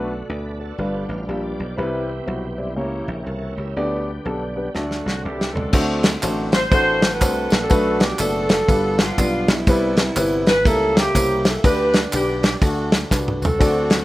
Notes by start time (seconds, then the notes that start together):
Already playing: B1 B2 D3 A3 B3 D4 F#4 A4 B4 D5
0.29 D2 F#4 B4 D5
0.60 F#4 A4 D5
0.78 G1 G2 F3 G3 A#3 D4 F4 G4 B4
0.86 B3
1.09 A1 F5
1.28 A#1 G3 D4 F4 G4 E5
1.43 D5
1.60 B1
1.76 C2 C3 E3 G3 B3 C4 E4 F#4 B4 E5
1.82 G4
2.26 B1 G3 C4 E4 F#4
2.58 G3 C4 E4 D5
2.76 C#2 C#3 E3 A#3 C#4 E4 G4 A#4 C#5
3.08 A#1
3.26 C2 F#4 A4 A#4 E5
3.56 C#2 E4 G4 C#5
3.75 D2 D3 G3 B3 D4 G4 B4 D5
4.25 B1 B3 D4 G4 A4
4.56 B3 D4 G4 B4
4.74 D2 D3 F#3 A3 D4 E4 F#4 A4 D5, snare
4.80 F#4
4.91 snare
5.05 C2 F#4, snare
5.22 C2 C4 E4 G4 B4 E5
5.41 snare
5.52 C#2 C4 D4 F#4 A4 D5
5.57 floor tom
5.73 D2 D3 A3 C4 D4 F#4 C5, kick, crash, tambourine
6.03 snare, ride, tambourine
6.23 A1 A3 C4 D4 F#4 C5, clap, ride, tambourine
6.52 C5, snare, ride, tambourine
6.71 A1 A3 C4 D4 F#4 A4 C5, kick, ride, tambourine
7.02 snare, ride, tambourine
7.12 F#4 B4
7.21 C2 A3 C4 D4 F#4 C5, kick, clap, ride, tambourine
7.50 A#1, snare, ride, tambourine
7.61 D4 F#4 A4
7.69 B1 B2 A3 B3 D4 F#4 B4, kick, ride, tambourine
8.00 G4, snare, ride, tambourine
8.19 F#1 A3 B3 D4 F#4 A4 D5, clap, ride, tambourine
8.49 snare, ride, tambourine
8.68 G1 G2 G3 B3 D4 F4 B4, kick, ride, tambourine
8.99 B3 D4 F4, snare, ride, tambourine
9.18 B1 G3 B3 D4 F4 D5, kick, clap, ride, tambourine
9.48 B1 G3 B3 E4, snare, ride, tambourine
9.67 C2 C3 G3 B3 C4 E4 B4, kick, ride, tambourine
9.97 snare, ride, tambourine
10.16 G1 G3 B3 C4 E4 B4, clap, ride, tambourine
10.46 B4, snare, ride, tambourine
10.65 C#2 C#3 G3 A#3 C#4 E4 A4 A#4, kick, ride, tambourine
10.96 A#3 E4 G4, snare, ride, tambourine
11.15 C2 G3 A#3 C#4 E4 C5, kick, clap, ride, tambourine
11.45 A4, snare, ride, tambourine
11.64 D2 D3 D4 G4 B4, kick, ride, tambourine
11.93 snare, ride, tambourine
12.13 B1 D4 G4 B4, clap, ride, tambourine
12.43 G4, snare, ride, tambourine
12.62 D2 D3 A3 D4 F#4 A4, kick, ride, tambourine
12.92 snare, ride, tambourine
13.10 C2 D4 F#4 B4, kick, snare, clap, tambourine
13.28 mid tom
13.42 C#2 C4 F#4 A4, floor tom, tambourine
13.59 D2 D3 F#3 A3 C4 D4 F#4 A4 D5, kick, ride, tambourine
13.90 snare, ride, tambourine